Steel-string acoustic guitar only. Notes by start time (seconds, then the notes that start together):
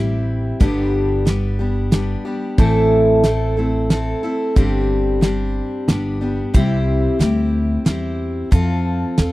Already playing: G3 C4 E4 G4
0.60 G2 D3 G3 B3 D4 G4
1.25 G3 B3 D4 G4
1.59 G3 B3 D4 G4
1.91 G3 B3 D4 G4
2.25 G3 B3 D4 G4
2.59 A2 E3 A3 C4 E4 A4
3.24 A3 C4 E4 A4
3.57 A3 C4 E4 A4
3.90 A3 C4 E4 A4
4.23 A3 C4 E4 A4
4.56 G2 D3 G3 C4 D4 G4
5.21 G3 C4 D4 G4
5.88 G3 B3 D4 G4
6.21 G3 B3 D4 G4
6.54 C3 G3 C4 E4 G4
7.19 G3 C4 E4 G4
7.85 G3 C4 E4 G4
8.51 F3 C4 F4 A4
9.18 C4 F4 A4